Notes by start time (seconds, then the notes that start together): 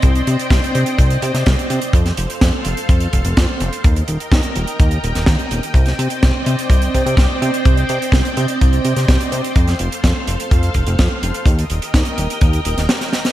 Already playing: C4 C5 D5 D#5 G5
0.02 C2, kick, closed hi-hat
0.15 closed hi-hat
0.27 C3, closed hi-hat
0.39 closed hi-hat
0.50 C2, kick, snare, closed hi-hat
0.64 closed hi-hat
0.75 C3, closed hi-hat
0.86 closed hi-hat
0.98 C2, kick, closed hi-hat
1.10 closed hi-hat
1.22 C3, closed hi-hat
1.34 C3, snare, closed hi-hat
1.46 C2, kick, snare, closed hi-hat
1.59 closed hi-hat
1.70 C3, closed hi-hat
1.82 closed hi-hat
1.93 F2 A4 F5, kick, closed hi-hat
2.06 snare, closed hi-hat
2.17 F1, closed hi-hat
2.30 closed hi-hat
2.41 F2, kick, snare, closed hi-hat
2.65 F1, closed hi-hat
2.77 closed hi-hat
2.89 F2, kick, closed hi-hat
3.00 closed hi-hat
3.13 F1, kick, closed hi-hat
3.25 F1, closed hi-hat
3.37 F2, kick, snare, closed hi-hat
3.60 F1, closed hi-hat
3.73 closed hi-hat
3.84 D#2 A#4 D#5 G5, kick, closed hi-hat
3.96 closed hi-hat
4.08 D#1, closed hi-hat
4.20 closed hi-hat
4.32 D#2, kick, snare, closed hi-hat
4.43 closed hi-hat
4.56 D#1, closed hi-hat
4.67 closed hi-hat
4.80 D#2, kick, closed hi-hat
4.91 closed hi-hat
5.03 D#1, closed hi-hat
5.15 D#1, snare, closed hi-hat
5.26 D#2, kick, snare, closed hi-hat
5.39 closed hi-hat
5.51 D#1, closed hi-hat
5.63 closed hi-hat
5.74 C2 C4 C5 D5, kick, closed hi-hat
5.86 snare, closed hi-hat
5.99 C3, closed hi-hat
6.10 closed hi-hat
6.23 C2, kick, snare, closed hi-hat
6.46 C3, closed hi-hat
6.59 closed hi-hat
6.70 C2, kick, closed hi-hat
6.82 closed hi-hat
6.94 C3, kick, closed hi-hat
7.06 C3, closed hi-hat
7.17 C2, kick, snare, closed hi-hat
7.42 C3, closed hi-hat
7.54 closed hi-hat
7.65 C2, kick, closed hi-hat
7.77 closed hi-hat
7.89 C3, closed hi-hat
8.02 closed hi-hat
8.12 C2, kick, snare, closed hi-hat
8.25 closed hi-hat
8.37 C3, closed hi-hat
8.48 closed hi-hat
8.61 C2, kick, closed hi-hat
8.73 closed hi-hat
8.85 C3, closed hi-hat
8.96 C3, snare, closed hi-hat
9.08 C2, kick, snare, closed hi-hat
9.21 closed hi-hat
9.32 C3, closed hi-hat
9.44 closed hi-hat
9.56 F2 A4 F5, kick, closed hi-hat
9.68 snare, closed hi-hat
9.79 F1, closed hi-hat
9.92 closed hi-hat
10.04 F2, kick, snare, closed hi-hat
10.27 F1, closed hi-hat
10.40 closed hi-hat
10.51 F2, kick, closed hi-hat
10.63 closed hi-hat
10.74 F1, kick, closed hi-hat
10.87 F1, closed hi-hat
10.99 F2, kick, snare, closed hi-hat
11.23 F1, closed hi-hat
11.34 closed hi-hat
11.46 D#2 A#4 D#5 G5, kick, closed hi-hat
11.59 closed hi-hat
11.70 D#1, closed hi-hat
11.82 closed hi-hat
11.94 D#2, kick, snare, closed hi-hat
12.05 closed hi-hat
12.18 D#1, closed hi-hat
12.30 closed hi-hat
12.41 D#2, kick, closed hi-hat
12.53 closed hi-hat
12.65 D#1, closed hi-hat
12.78 D#1, snare, closed hi-hat
12.89 snare, closed hi-hat
13.01 snare, closed hi-hat
13.13 snare, closed hi-hat
13.25 snare, closed hi-hat